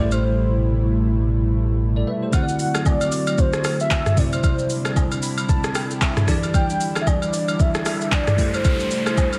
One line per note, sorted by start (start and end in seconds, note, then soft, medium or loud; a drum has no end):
0.00 2.03 A1 medium
0.00 2.29 B2 medium
0.00 2.31 C3 medium
0.00 2.29 G3 medium
0.00 2.02 A3 medium
0.00 4.13 A3 medium
0.00 2.02 E4 medium
0.00 2.29 E4 medium
0.00 1.77 G4 medium
0.00 1.78 A4 medium
0.00 1.78 C5 medium
0.00 0.14 D5 medium
0.11 0.91 C5 medium
0.11 high agogo medium
0.11 shaker medium
1.96 2.07 A4 medium
1.96 2.07 D5 medium
2.07 2.22 B4 medium
2.07 2.22 E5 medium
2.23 2.48 G4 medium
2.23 2.35 C5 medium
2.31 4.13 D3 medium
2.31 8.34 D3 medium
2.31 4.15 F#3 medium
2.31 4.13 C4 medium
2.31 6.24 C4 medium
2.31 4.14 E4 medium
2.31 4.15 F#4 medium
2.31 4.14 F#4 medium
2.31 2.82 F#5 loud
2.31 kick loud
2.31 high agogo medium
2.31 shaker medium
2.36 2.42 C5 medium
2.42 4.18 D5 medium
2.49 shaker medium
2.59 open hi-hat soft
2.59 shaker medium
2.74 cross-stick medium
2.74 high agogo medium
2.74 shaker medium
2.86 3.41 D5 loud
2.86 kick loud
2.86 low woodblock medium
2.86 shaker medium
3.01 high agogo medium
3.01 shaker medium
3.12 open hi-hat medium
3.12 shaker loud
3.27 high agogo medium
3.27 shaker medium
3.38 3.81 C5 loud
3.38 kick loud
3.38 shaker medium
3.53 cross-stick medium
3.53 shaker soft
3.64 cross-stick loud
3.64 open hi-hat medium
3.64 high agogo medium
3.64 shaker medium
3.80 4.20 E5 loud
3.80 shaker medium
3.91 kick medium
3.91 clap loud
3.91 high agogo medium
3.91 low woodblock medium
3.91 shaker medium
4.06 cross-stick medium
4.06 mid tom medium
4.06 shaker medium
4.15 6.23 C3 medium
4.15 9.39 G3 medium
4.15 6.23 C4 medium
4.15 9.39 D4 medium
4.15 8.35 E4 medium
4.15 6.24 E4 medium
4.15 6.25 C5 medium
4.15 4.33 D5 medium
4.15 kick medium
4.15 open hi-hat medium
4.15 shaker medium
4.20 6.25 D5 medium
4.33 5.08 C5 medium
4.33 high agogo medium
4.33 shaker soft
4.44 kick loud
4.44 high agogo medium
4.44 shaker medium
4.59 shaker medium
4.70 open hi-hat soft
4.70 shaker medium
4.85 cross-stick medium
4.85 high agogo medium
4.85 shaker medium
4.96 kick medium
4.96 low woodblock medium
4.96 shaker medium
5.12 high agogo medium
5.12 shaker medium
5.23 5.47 B5 medium
5.23 open hi-hat medium
5.23 shaker loud
5.38 high agogo medium
5.38 shaker medium
5.49 5.74 A5 medium
5.49 kick loud
5.49 shaker medium
5.64 cross-stick medium
5.64 shaker medium
5.75 6.00 G5 medium
5.75 cross-stick loud
5.75 open hi-hat medium
5.75 high agogo medium
5.75 shaker medium
5.91 shaker medium
6.01 6.26 E5 medium
6.01 kick medium
6.01 clap loud
6.01 high agogo medium
6.01 low woodblock medium
6.01 shaker medium
6.17 cross-stick loud
6.17 mid tom medium
6.17 shaker soft
6.26 8.33 E3 medium
6.26 8.36 E3 medium
6.26 8.35 D4 medium
6.26 8.34 E4 medium
6.26 8.35 G4 medium
6.26 6.30 D5 medium
6.26 kick medium
6.26 cross-stick medium
6.26 open hi-hat medium
6.26 shaker medium
6.31 8.36 D5 medium
6.43 high agogo medium
6.43 shaker soft
6.54 6.98 G5 loud
6.54 kick loud
6.54 noise sweep medium
6.54 high agogo medium
6.54 shaker medium
6.70 shaker medium
6.81 open hi-hat soft
6.81 shaker medium
6.95 cross-stick medium
6.95 high agogo medium
6.95 shaker medium
7.01 7.09 E5 medium
7.07 7.62 D5 loud
7.07 kick loud
7.07 low woodblock medium
7.07 shaker medium
7.22 high agogo medium
7.22 shaker medium
7.33 open hi-hat medium
7.33 shaker loud
7.48 high agogo medium
7.48 shaker medium
7.60 7.86 E5 loud
7.60 kick loud
7.60 shaker medium
7.75 cross-stick medium
7.75 shaker medium
7.86 8.14 E5 loud
7.86 cross-stick loud
7.86 open hi-hat medium
7.86 high agogo medium
7.86 shaker medium
8.01 shaker medium
8.12 8.56 D5 loud
8.12 kick medium
8.12 clap loud
8.12 high agogo medium
8.12 low woodblock medium
8.12 shaker medium
8.27 cross-stick medium
8.27 mid tom medium
8.27 shaker medium
8.36 9.39 C3 medium
8.36 9.39 A3 medium
8.36 9.39 E4 medium
8.36 9.39 G4 medium
8.36 9.39 A4 medium
8.36 kick medium
8.36 open hi-hat medium
8.36 shaker medium
8.41 9.39 C5 medium
8.54 9.39 C5 medium
8.54 high agogo medium
8.54 shaker soft
8.65 kick loud
8.65 high agogo medium
8.65 shaker medium
8.80 shaker medium
8.91 open hi-hat soft
8.91 shaker medium
9.06 cross-stick medium
9.06 high agogo medium
9.06 shaker medium
9.17 kick medium
9.17 low woodblock medium
9.17 shaker medium
9.33 high agogo medium
9.33 shaker medium